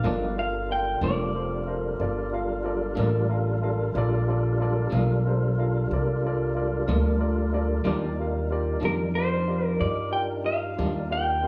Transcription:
Already playing: clean electric guitar F5
0.03 upright bass G1, clean electric guitar G2 F3 A#3 D4, tonewheel organ G#3 D#4 F#4 B4, upright piano F4 A4 A#4 D5
0.36 tonewheel organ G3 D4 F4 A#4, upright piano F4 A4 A#4 F5, clean electric guitar F5
0.69 upright piano F4 A4 A#4 F5, clean electric guitar G5
1.01 upright bass F1, clean electric guitar G2 F3 A#3 D4 D5, upright piano F4 A4 A#4 C5
1.34 upright piano F4 A4 A#4 C5
1.66 upright piano F4 A4 A#4 C5
1.99 upright bass G1, upright piano F4 A4 A#4 D5
2.32 upright piano F4 A4 A#4 F5
2.64 upright piano F4 A4 A#4 D5
2.95 upright bass A1, clean electric guitar G2 F3 A#3 D4, upright piano F4 A4 A#4
3.00 upright piano D5
3.29 upright piano F4 A4 A#4 F5
3.62 upright piano F4 A4 A#4 F5
3.94 upright bass A#1, tonewheel organ G3 D4 F4 A#4, upright piano F4 A4 A#4
3.98 upright piano D5
4.28 upright piano F4 A4 A#4 D5
4.60 upright piano F4 A4 A#4 D5
4.90 upright bass B1, clean electric guitar G2 F3 A#3 D4, upright piano F4 A4
4.94 upright piano A#4 F5
5.25 upright piano F4 A4 A#4 C5
5.58 upright piano F4 A4 A#4 F5
5.91 upright bass C2, upright piano F4 A4 A#4 D5
6.25 upright piano F4 A4 A#4 D5
6.55 upright piano F4 A4 A#4 D5
6.87 upright bass D2, clean electric guitar G2 F3 A#3 D4, upright piano F4 A4 A#4 D5
7.19 upright piano F4 A4 A#4 D5
7.52 upright piano F4 A4 A#4 D5
7.84 upright bass D#2, clean electric guitar D#3 G3 A#3 D4, tonewheel organ G3 D4 D#4 A#4, upright piano F4 G4 A#4 D5
8.19 upright piano F4 G4 A#4 F5
8.50 upright piano F4 G4 A#4 D5
8.80 upright bass F2, clean electric guitar D#3 G3 A#3 D4, upright piano F4 G4 A#4
8.85 clean electric guitar A#4, upright piano D5
9.15 upright piano F4 G4 A#4 D5, clean electric guitar C5
9.47 upright piano F4 G4 A#4 D5
9.66 clean electric guitar A#4
9.79 upright bass G2, upright piano F4 G4 A#4 D#5, clean electric guitar D5
10.11 upright piano F4 G4 A#4 D5, clean electric guitar G5
10.44 upright piano F4 G4 A#4 D#5, clean electric guitar F5
10.76 upright bass D#2, clean electric guitar D#3 G3 A#3 D4, upright piano F4 G4 A#4 D5
11.10 upright piano F4 G4 A#4 F5, clean electric guitar G5
11.42 upright piano F4 G4 A#4 F5

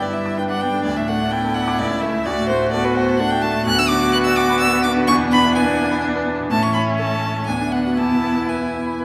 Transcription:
Already playing: grand piano G2 D3 B3 D4 D5, cello G3, viola E4
0.02 grand piano B4, violin D5
0.13 grand piano D5, violin E5
0.26 grand piano D6
0.38 viola D4, grand piano B4, violin G5
0.49 grand piano D5, violin F#5
0.61 grand piano B3, violin G5
0.74 grand piano D3
0.84 grand piano D2, cello A3, violin D5
0.97 grand piano A2, violin E5
1.08 grand piano A3, violin F#5
1.20 grand piano D4
1.31 cello B3, viola E4, grand piano D5, violin G5
1.44 grand piano A4
1.54 grand piano D5, violin F#5
1.68 grand piano D6
1.79 grand piano C#2, cello A3, violin D5
1.91 grand piano C#3
2.02 grand piano A3, violin E5
2.14 grand piano E4
2.26 grand piano D2, cello A3, viola F#4, violin D5
2.38 grand piano A2
2.49 grand piano A3, violin C5
2.62 grand piano F#4
2.72 cello B3, viola F#4, grand piano A4, violin D5
2.84 grand piano F#4, violin B4
2.95 violin C5, grand piano F#5
3.08 grand piano A5
3.18 cello A3, viola D4, grand piano A4, violin F#5
3.30 grand piano F#4, violin G5
3.42 grand piano A3, violin A5
3.55 grand piano A2
3.66 grand piano D2, cello B3, viola F#4, violin F#6
3.78 grand piano D3, violin E6
3.89 grand piano D4, violin D6
4.03 grand piano F#4
4.13 grand piano B4, violin F#6
4.25 grand piano D5, violin E6
4.36 grand piano F#5, violin D6
4.50 grand piano B5
4.60 grand piano D5, violin E6
4.73 grand piano B4
4.83 grand piano D4, violin D6
4.96 grand piano D3
5.08 grand piano E2, viola D4, violin C#6
5.20 grand piano B2
5.31 grand piano D4, violin B5
5.44 grand piano E4
5.55 grand piano B4, violin G#5
5.67 grand piano D5
5.79 grand piano E5
5.91 grand piano B5
6.03 grand piano D5
6.15 grand piano B4
6.27 grand piano D4
6.40 grand piano B2
6.50 grand piano A2, cello A3, viola C#4, violin A5
6.63 grand piano E3, violin C#6
6.74 grand piano C#4, violin B5
6.88 grand piano E4
6.99 grand piano A4, violin A5
7.12 grand piano C#5
7.24 grand piano E5
7.36 grand piano A5
7.47 grand piano D2, cello B3, viola D4, violin G#5
7.61 grand piano D3
7.72 grand piano B3, violin F#5
7.85 grand piano F#4
7.98 grand piano E2, viola E4, violin A5
8.11 grand piano B2
8.24 grand piano B3
8.36 grand piano E4
8.49 grand piano B4, violin G#5
8.61 grand piano E4
8.74 grand piano E5
8.87 grand piano B5
9.00 grand piano B4

